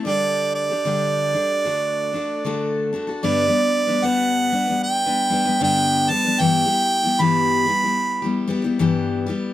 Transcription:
X:1
M:4/4
L:1/16
Q:"Swing" 1/4=76
K:G
V:1 name="Harmonica"
d2 d12 z2 | d4 f4 g4 g2 a2 | g4 b6 z6 |]
V:2 name="Steel-string acoustic guitar"
[D,G,DGA]3 [DGA] [D,G,DGA]2 [G,DGA]2 [D,A,DFA]2 [A,DFA]2 [D,A,DFA]2 [A,DFA] [DFA] | [G,,D,G,B,DB] [G,B,DB]2 [G,B,DB] [G,,D,G,B,DB]2 [G,B,DB] [G,B,DB]2 [G,B,DB] [G,B,DB] [G,B,DB] [G,,D,G,B,DB]2 [G,B,DB] [G,B,DB] | [G,,E,G,B,EG] [G,B,EG]2 [G,B,EG] [G,,E,G,B,EG]2 [G,B,EG] [G,B,EG]2 [G,B,EG] [G,B,EG] [G,B,EG] [G,,E,G,B,EG]2 [G,B,EG]2 |]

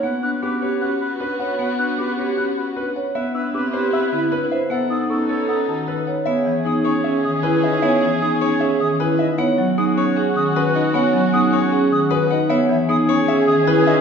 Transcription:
X:1
M:4/4
L:1/8
Q:1/4=154
K:B
V:1 name="Flute"
z f' =d' z f' b z2 | z f' =d' z f' b z2 | z e' =d' z e' b z2 | z d' c' z d' =a z2 |
[K:E] z e d' c' z d' g d | z e d' c' z d' g d | z f d' c' z d' g d | z f d' c' z d' g d |
z e d' c' z d' g d |]
V:2 name="Grand piano"
f z =G c f z B f | f z =G c f z B f | e z =G =c e z B e | f z =A c f z B f |
[K:E] e z G c e z B e | e z G c e z B e | f z G c f z B f | f z G c f z B f |
e z G c e z B e |]
V:3 name="Oboe"
B B B B B B B B | B B B B B B B z | B B B B B B B z | =A A A A A A A z |
[K:E] G8- | G6- G z | F8- | F6- F z |
G8 |]
V:4 name="Vibraphone"
z =D C =G z F D c | z =D C =G z F D c | z =D =C =G z E D =c | z D C =A z F D c |
[K:E] c z D C G z E D | c z D C G z E D | c z D C G z F D | c z D C G z F D |
c z D C G z E D |]
V:5 name="String section"
[B,F]8- | [B,F]6- [B,F] z | [B,E]6- [B,E] z | [B,D]6- [B,D] z |
[K:E] [CG]8- | [CG]6- [CG] z | [CF]8- | [CF]6- [CF] z |
[CG]8 |]
V:6 name="Marimba"
B, z B, z C z3 | B, z B, z C z3 | B, z B, z =C =D, z2 | B, z B, z C D, z2 |
[K:E] B, E, B, z C D, z2 | B, E, B, z C D, z2 | B, F, B, z C D, z2 | B, F, B, z C D, z2 |
B, E, B, z C D, z2 |]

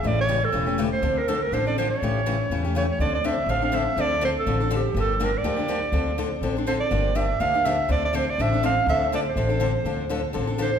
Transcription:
X:1
M:4/4
L:1/8
Q:"Swing" 1/4=244
K:Dm
V:1 name="Clarinet"
d ^c2 A3 z =c- | c B A B c d c ^c- | ^c6 c c | d d e2 f f e2 |
d2 c A3 G2 | A2 B d4- d- | d3 z3 c d- | d2 e2 f2 e2 |
d d c d e2 f2 | e2 d c4- c- | c3 z3 c2 |]
V:2 name="Steel-string acoustic guitar"
[^C,E,A,^CG] z [C,E,A,CG] z [C,E,A,CG] [A,CG] [C,E,A,CG] z | [D,F,CDA] z [D,F,CDA] z [D,F,CDA] [CDA] [D,F,CDA] z | [^C,E,A,^CG] z [C,E,A,CG] z [C,E,A,CG] [A,CG] [C,E,A,CG] z | [D,F,CDA] z [D,F,CDA] z [D,F,CDA] [CDA] [D,F,CDA] z |
[D,F,CDA] z [D,F,CDA] z [D,F,CDA] [CDA] [D,F,CDA] z | [D,F,B,DG] z [D,F,B,DG] z [D,F,B,DG] [B,DG] [D,F,B,DG] z | [D,F,CDA] z [D,F,CDA] z [D,F,CDA] [CDA] [D,F,CDA] z | [D,F,B,DG] z [D,F,B,DG] z [D,F,B,DG] [B,DG] [D,F,B,DG] z |
[D,F,CDA] z [D,F,CDA] z [D,F,CDA] [CDA] [D,F,CDA] z | [D,F,CDA] z [D,F,CDA] z [D,F,CDA] [CDA] [D,F,CDA] z | [D,F,CDA] z [D,F,CDA] z [D,F,CDA] [CDA] [D,F,CDA] z |]
V:3 name="Upright bass" clef=bass
A,,,4 E,,,4 | D,,4 A,,,4 | A,,,4 E,,4 | D,,4 A,,,4 |
D,,4 A,,,4 | G,,,4 D,,4 | D,,4 A,,,4 | G,,,4 D,,4 |
D,,4 A,,,4 | D,,4 A,,,4 | D,,4 A,,,4 |]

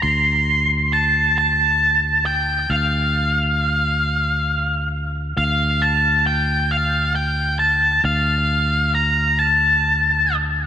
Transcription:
X:1
M:6/8
L:1/8
Q:3/8=45
K:Bblyd
V:1 name="Lead electric guitar"
c'2 a a2 g | f4- f z | f a g f g a | f2 b a2 z |]
V:2 name="Fingered electric bass" clef=bass
D,,6 | D,,6 | D,,6 | D,,6 |]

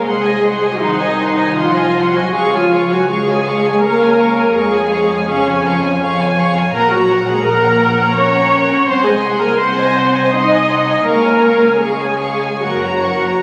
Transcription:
X:1
M:3/4
L:1/16
Q:1/4=81
K:Db
V:1 name="Violin section"
c' a c' a c' a c' a c' a c' a | d' a d' a d' a d' a d' a d' a | d' a d' a d' a d' a d' a d' a | b g b g b g b g b g b g |
c' a c' a c' a c' a c' a c' a | d' a d' a d' a d' a d' b d' b |]
V:2 name="Violin section"
[cg] [ea] [cg] [ea] [cg] [ea] [cg] [ea] [cg] [ea] [cg] [ea] | [Af] [da] [Af] [da] [Af] [da] [Af] [da] [Af] [da] [Af] [da] | [Af] [da] [Af] [da] [Af] [da] [Af] [da] [Af] [da] [Af] [da] | [Bg] [db] [Bg] [db] [Bg] [db] [Bg] [db] [Bg] [db] [Bg] [db] |
[cg] [ea] [cg] [ea] [cg] [ea] [cg] [ea] [cg] [ea] [cg] [ea] | [Af] [da] [Af] [da] [Af] [da] [Af] [da] [Bg] [db] [Bg] [db] |]
V:3 name="Viola section"
A4 E4 F3 G | A F2 G A4 B4 | A4 D4 z4 | B G2 A B4 d4 |
c A2 B c4 e4 | B4 A4 G4 |]
V:4 name="Cello section" clef=bass
A,4 E,4 F,3 G, | A, F,2 G, A,4 B,4 | A,4 D,4 z4 | B, G,2 A, B,4 D4 |
C A,2 B, C4 E4 | B,4 A,4 G,4 |]
V:5 name="Double bass section" clef=bass
C,,12 | D,,12 | F,,12 | B,,,12 |
C,,12 | D,,8 G,,,4 |]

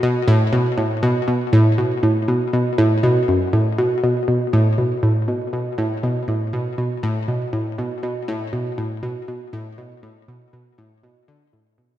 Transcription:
X:1
M:4/4
L:1/8
Q:1/4=120
K:Bm
V:1 name="Synth arpeggio sound" clef=bass
B,, A,, B,, A,, B,, B,, A,, B,, | A,, B,, B,, A,, B,, F,, A,, B,, | B,, B,, A,, B,, A,, B,, B,, A,, | B,, A,, B,, B,, A,, B,, A,, B,, |
B,, A,, B,, A,, B,, B,, A,, B,, | A,, B,, B,, A,, B,, D, A,, B,, |]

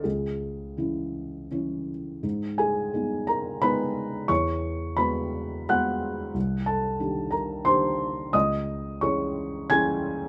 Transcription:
X:1
M:3/4
L:1/8
Q:1/4=88
K:G#m
V:1 name="Felt piano"
G4- G z | z [Gg]2 [Aa] [Bb]2 | [cc']2 [Bb]2 [ff']2 | z [=A=a]2 [^A^a] [=c=c']2 |
[dd']2 [cc']2 [gg']2 |]
V:2 name="Felt piano"
C,,2 [E,CE]2 [E,CE]2 | G,,2 [G,B,D]2 [G,B,D]2 | E,,2 [G,B,F]2 [G,B,F]2 | =C,,2 [_E,=D=G]2 [E,DG]2 |
C,,2 [E,CG]2 [E,CG]2 |]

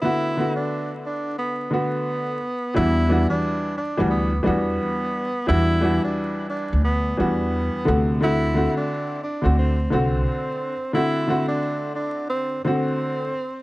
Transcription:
X:1
M:4/4
L:1/16
Q:"Swing 16ths" 1/4=88
K:Em
V:1 name="Tenor saxophone"
E3 D3 D2 B,2 B,6 | E3 D3 D2 B,2 B,6 | E3 D3 D2 B,2 B,6 | E3 D3 D2 C2 C6 |
E3 D3 D2 C2 C6 |]
V:2 name="Upright piano"
[D,A,B,F]2 [D,A,B,F]6- [D,A,B,F] z [D,A,B,F]4 z2 | [E,G,DF]2 [E,G,DF]4 z [E,G,DF]2 z [E,G,DF]4- [E,G,DF] z | [E,G,DF]2 [E,G,DF]6- [E,G,DF] z [E,G,DF]4 [C,D,A,F]2 | [D,A,CF]2 [D,A,CF]4 z [D,A,CF]2 z [D,A,CF]4- [D,A,CF] z |
[D,A,CF]2 [D,A,CF]6- [D,A,CF] z [D,A,CF]4 z2 |]
V:3 name="Upright bass" clef=bass
z16 | E,,3 z4 D,,3 E,,2 z4 | E,,3 z4 D,,3 E,,3 z D,,2- | D,,3 z4 D,,3 C,,2 z4 |
z16 |]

